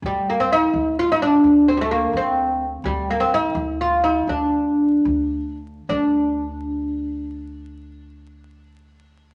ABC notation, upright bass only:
X:1
M:6/8
L:1/8
Q:3/8=80
K:none
V:1 name="Upright bass" clef=bass
D,,3 D,,3 | D,,3 D,,3 | D,,3 D,,3 | D,,3 D,,3 |
D,,6- | D,,6 |]